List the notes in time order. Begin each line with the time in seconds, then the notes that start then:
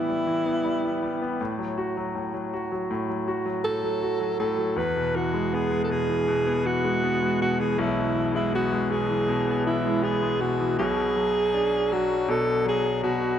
Already playing: A2 E3 G3 B3 E4
0.08 G3
0.27 E3
0.46 B3
0.65 G3
0.84 B3
1.03 G3
1.22 B3
1.41 A2
1.59 F#3
1.78 F#4
1.97 F#3
2.15 A2
2.34 F#3
2.54 F#4
2.72 F#3
2.91 A2
3.09 F#3
3.28 F#4
3.46 F#3
3.64 A2 A4
3.83 F#3
4.02 F#4
4.20 F#3
4.40 A2 A4
4.58 F#3
4.76 E2 B4
4.96 B2
5.15 E3 F#4
5.34 G#3
5.53 B3 G#4
5.72 G#3
5.84 A4
5.90 B2 G#4
6.09 E3
6.28 B2
6.47 B3
6.65 E3 F#4
6.85 G#3
7.03 B3
7.22 G#3
7.41 B2 F#4
7.60 E3 G#4
7.78 B1 E4
7.97 B2
8.15 E3
8.35 G#3 E4
8.54 B3 F#4
8.73 G#3
8.91 B2 G#4
9.10 E3
9.28 B2
9.47 B3
9.67 E3 E4
9.86 G#3
10.03 B3 G#4
10.23 G#3
10.41 B2 F#4
10.60 E3
10.79 B1 B2 G#4
11.16 F#3
11.54 D4
11.92 F#3 F#4
12.28 B2 A4
12.66 F#3 G#4
13.03 B2 F#4